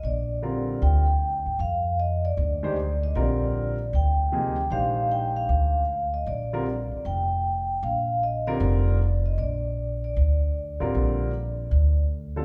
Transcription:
X:1
M:4/4
L:1/8
Q:"Swing" 1/4=154
K:Bbmix
V:1 name="Vibraphone"
d4 g4 | f2 e d4 e | d4 g4 | f2 g f4 e |
d4 g4 | f2 e d4 e | d3 d4- d- | d6 z2 |]
V:2 name="Grand piano"
z2 [D,G,CFB]3 z3 | z4 z [E,A,DGc] z2 | [D,G,CFB]3 z3 [C,F,B,EA] z | [E,A,DGc]4- [E,A,DGc] z3 |
z [D,G,CFB] z6 | z3 [D,G,CFB]3 z2 | z6 z [D,G,CFB]- | [D,G,CFB]2 z4 z [D,G,CF=A] |]
V:3 name="Upright bass" clef=bass
B,,,4 D,,3 =A,,, | F,,4 D,,4 | B,,,4 D,,4 | B,,,4 D,,4 |
B,,,3 z F,,,4 | B,,,4 F,,,4 | B,,,4 D,,3 =A,,, | B,,,4 D,,4 |]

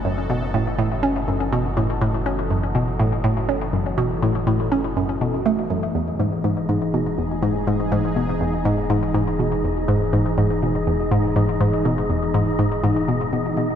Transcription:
X:1
M:4/4
L:1/8
Q:1/4=122
K:E
V:1 name="Synth texture"
[Dd]8- | [Dd]8- | [Dd]8 | [Dd]8- |
[Dd]8- | [Dd]8- | [Dd]8 |]
V:2 name="Analog synth pad"
[E,FA]8- | [E,FA]8- | [E,FA]8 | [DG]8- |
[DG]8- | [DG]8- | [DG]8 |]
V:3 name="Synth arpeggio sound" clef=bass
F,, B,, A,, A,, C F,, B,, A,, | A,, C F,, B,, A,, A,, C F,, | B,, A,, A,, C F,, B,, A, F,, | E,, G,, G,, G,, B,, E,, G,, G,, |
G,, B,, E,, G,, G,, G,, B,, E,, | G,, G,, G,, B,, E,, G,, G,, G,, | B,, E,, G,, G,, G,, B,, B,, B,, |]
V:4 name="Sub bass" clef=bass
F,,,8- | F,,,8- | F,,,8 | E,,,8- |
E,,,8- | E,,,8- | E,,,8 |]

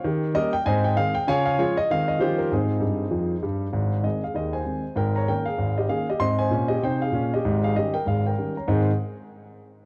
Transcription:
X:1
M:4/4
L:1/8
Q:"Swing" 1/4=195
K:Ab
V:1 name="Grand piano"
z2 [GBe] g [cea] g f g | [dfa] f [FAd] e f e [FGc] B | [CEA]6 z2 | z2 [Ae] [Af] [Ae] [ca]3 |
[Bg] [db] [Bg] [Af]2 [Ge] [Af] [Ge] | [ec'] [ca]2 [Ge] [cg] [Af]2 [Ge]- | [Ge] [Af] [Ge] [Bg] [Af] [Bg]2 [db] | [A,,E,CEAca] z6 z |]
V:2 name="Grand piano" clef=bass
[E,G]2 [G,B,D]2 [A,,C]2 [E,A,C]2 | [D,F]2 [F,A,D]2 [E,A,C]2 [E,F,G,D]2 | A,,2 [G,,G,]2 [F,,F,]2 [G,,G,]2 | [A,,,A,,]2 [E,A,C]2 [E,,E,]2 [E,A,C]2 |
[A,,,A,,]2 [E,B,D]2 [A,,,A,,]2 [E,B,D]2 | [A,,C]2 [B,,D]2 [C,E]2 [B,,D]2 | [A,,,A,,]2 [E,G,D]2 [A,,,A,,]2 [E,G,D]2 | z8 |]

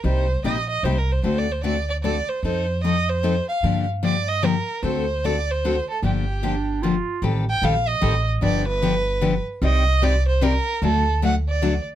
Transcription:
X:1
M:3/4
L:1/8
Q:"Swing" 1/4=150
K:Gm
V:1 name="Violin"
c2 e e (3c B c | (3c d c d d d c | c2 e c2 f- | f z d e B2 |
c2 d c2 A | G4 z2 | z g f e2 z | d =B4 z |
e2 d c B2 | A2 ^f d2 z |]
V:2 name="Clarinet"
z6 | z6 | z6 | z6 |
z6 | z2 D2 F2 | z6 | z6 |
z6 | z6 |]
V:3 name="Steel-string acoustic guitar"
[C,G,B,EG] z [C,G,B,EG] z [C,G,B,EG] z | [D,A,C^FA] z [D,A,CFA] z [D,A,CFA] z | [F,CEA] z [F,CEA] z [F,CEA] z | [D,F,B,DG] z [D,F,B,DG] z [D,F,B,DG] z |
[D,A,C^FA] z [D,A,CFA] z [D,A,CFA] z | [D,F,B,DG] z [D,F,B,DG] z [D,F,B,DG] z | [E,G,CGA] z [E,G,CGA] z [E,G,CGA] z | [D,F,=B,DG] z [D,F,B,DG] z [D,F,B,DG] z |
[C,G,CEGd] z [C,G,CEGd] z [C,G,CEGd] z | [D,^F,A,D^F] z [D,F,A,DF] z [D,F,A,DF] z |]
V:4 name="Upright bass" clef=bass
C,,2 B,,,2 C,,2 | D,,6 | F,,6 | G,,6 |
D,,6 | G,,,6 | A,,,2 B,,,2 A,,,2 | G,,,6 |
C,,6 | D,,6 |]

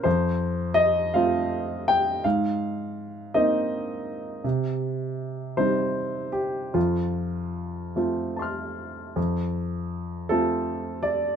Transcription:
X:1
M:6/8
L:1/8
Q:3/8=54
K:Fmix
V:1 name="Upright piano"
c2 e f2 g | f3 e3 | z3 c2 G | F3 z [ac'f']2 |
z3 A2 d |]
V:2 name="Upright piano"
F,,3 [A,CF]3 | _A,,3 [B,CE]3 | C,3 [G,CE]3 | F,,3 [A,CF]3 |
F,,3 [A,CF]3 |]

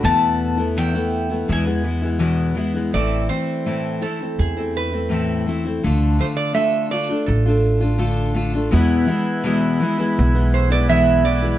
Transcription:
X:1
M:4/4
L:1/16
Q:1/4=83
K:Em
V:1 name="Mandolin"
a4 g4 ^g6 z2 | [K:Am] z16 | z16 | z16 |]
V:2 name="Resonator guitar played with a steel bar"
z16 | [K:Am] d2 c4 A2 ^G2 B4 z2 | z2 c d e2 d2 A6 z2 | z8 z2 c d e2 d2 |]
V:3 name="Accordion"
z16 | [K:Am] z16 | z16 | [EB^g]16 |]
V:4 name="Steel-string acoustic guitar"
[E,,B,,E,A,B,E]3 [E,A,B,E] [E,,B,,E,A,B,E] [E,A,B,E]2 [E,A,B,E] [E,,B,,E,^G,B,E] [E,G,B,E] [E,G,B,E] [E,G,B,E] [E,,B,,E,G,B,E]2 [E,G,B,E] [E,G,B,E] | [K:Am] [A,,E,A,CE]2 [E,A,CE]2 [A,,E,A,CE]2 [E,A,CE] [A,CE]2 [A,CE]2 [A,CE] [A,,E,A,CE]2 [E,A,CE] [A,CE] | [D,A,DF]2 [D,A,DF]2 [D,A,DF]2 [D,A,DF] [A,DF]2 [A,DF]2 [A,DF] [D,A,DF]2 [D,A,DF] [A,DF] | [E,,B,,E,^G,B,E]2 [E,G,B,E]2 [E,,B,,E,G,B,E]2 [E,G,B,E] [E,G,B,E]2 [E,G,B,E]2 [E,G,B,E] [E,,B,,E,G,B,E]2 [E,G,B,E] [E,G,B,E] |]
V:5 name="Upright bass" clef=bass
E,,8 E,,8 | [K:Am] A,,,2 z6 E,,8 | D,,2 z6 A,,,8 | E,,2 z6 B,,,8 |]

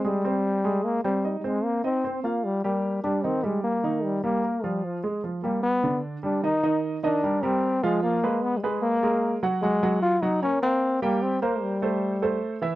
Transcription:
X:1
M:4/4
L:1/16
Q:1/4=150
K:Cm
V:1 name="Grand piano"
[A,A]2 [Cc]4 [A,A]4 [Cc]2 [Ee]2 [Cc]2- | [Cc]2 [Ee]2 [Cc]2 [Ff]4 [B,G]4 [G,G]2 | [E,E]2 [G,G]4 [E,E]4 [G,G]2 [B,B]2 [F,F]2- | [F,F]2 [A,A]2 [F,F]2 [G,G]4 [D,D]4 [G,G]2 |
[E,Ee]2 [E,Ee]4 [E,Ee]2 [G,GB]2 [G,GB]4 [F,Ff]2- | [F,Ff]2 [A,A_c]4 [A,Ac]4 [A,AB]4 [_G,_G_g]2 | [_G,_G_g]2 [G,Gg]4 [G,Gg]2 [B,B_d]2 [B,Bf]4 [=G,=G=g]2- | [G,Gg]2 [B,Bc]4 [=A,=Ac]4 [A,Ac]4 [=E,=E=e]2 |]
V:2 name="Trombone"
G,8 B,2 G,3- G,/2 G,/2 A,2 | B,2 C4 B,2 G,2 G,4 D2 | C2 A,2 B,4 G,2 B,4 G,2 | F,2 z4 B,2 =B,4 z2 D2 |
E4 z2 D4 C4 A,2 | B,4 _C3/2 G,/2 A,2 B,6 z2 | A,4 F2 E2 _D2 C4 B,2 | C2 B,2 G,8 z4 |]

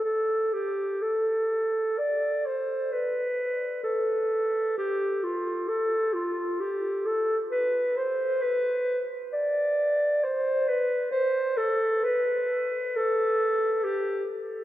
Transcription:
X:1
M:4/4
L:1/8
Q:1/4=66
K:Am
V:1 name="Clarinet"
A G A2 d c B2 | A2 G F A F G A | B c B z d2 c B | c A B2 A2 G z |]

